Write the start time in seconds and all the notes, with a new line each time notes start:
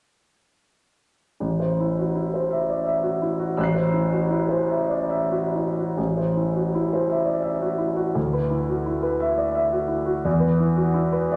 1.40 A1
1.60 C5
1.80 E4
1.99 F#4
2.15 E4
2.34 C5
2.51 E5
2.69 D5
2.86 E5
3.03 F#4
3.22 E4
3.39 F#4
3.57 A1 E6 F#6
3.64 C7
3.75 C5
3.93 E4
4.12 F#4
4.29 E4
4.49 C5
4.69 E5
4.89 D5
5.10 E5
5.31 F#4
5.55 E4
5.77 F#4
5.97 A1
6.17 C5
6.36 E4
6.56 F#4
6.75 E4
6.93 C5
7.10 E5
7.26 D5
7.43 E5
7.62 F#4
7.78 E4
7.96 F#4
8.15 D2
8.33 B4
8.50 E4
8.69 F#4
8.86 E4
9.03 B4
9.20 E5
9.38 D5
9.55 E5
9.72 F#4
9.88 E4
10.06 F#4
10.25 E2
10.40 B4
10.59 E4
10.76 F#4
10.94 E4
11.13 B4
11.32 D5